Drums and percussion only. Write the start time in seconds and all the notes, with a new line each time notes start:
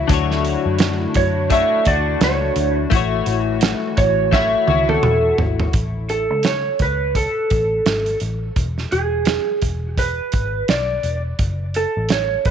0.09 kick, closed hi-hat
0.31 snare
0.45 closed hi-hat
0.79 snare, closed hi-hat
1.14 kick, closed hi-hat
1.50 kick, closed hi-hat
1.85 kick, closed hi-hat
2.21 snare, closed hi-hat
2.56 closed hi-hat
2.91 kick, closed hi-hat
3.26 closed hi-hat
3.61 snare, closed hi-hat
3.97 kick, closed hi-hat
4.33 kick, snare
4.68 high tom
4.89 high tom
5.03 mid tom
5.38 floor tom
5.60 floor tom
5.73 kick, closed hi-hat
6.09 closed hi-hat
6.43 snare, closed hi-hat
6.79 kick, closed hi-hat
7.15 kick, closed hi-hat
7.50 kick, closed hi-hat
7.86 snare, closed hi-hat
8.06 closed hi-hat
8.20 closed hi-hat
8.56 kick, closed hi-hat
8.78 snare
8.92 closed hi-hat
9.25 snare, closed hi-hat
9.62 kick, closed hi-hat
9.98 kick, closed hi-hat
10.32 kick, closed hi-hat
10.68 snare, closed hi-hat
11.03 closed hi-hat
11.39 kick, closed hi-hat
11.74 closed hi-hat
12.09 snare, closed hi-hat
12.45 kick, closed hi-hat